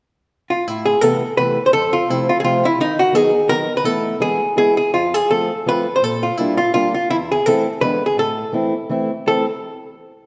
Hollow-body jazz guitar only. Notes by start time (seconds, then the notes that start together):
0.50 F4
0.68 E4
0.86 G#4
1.01 A4
1.37 B4
1.66 C5
1.73 A4
1.93 F4
2.10 E4
2.29 F4
2.40 G#4
2.44 F4
2.65 E4
2.81 D#4
2.99 F#4
3.15 G#4
3.49 A#4
3.77 B4
3.85 A4
4.22 G#4
4.58 G#4
4.77 G#4
4.94 F4
5.14 G#4
5.31 A4
5.69 B4
5.96 C5
6.04 A4
6.23 F4
6.37 E4
6.57 F4
6.74 F4
6.94 F4
7.10 E4
7.32 G#4
7.46 A4
7.81 B4
8.06 G#4
8.19 A4
9.28 A4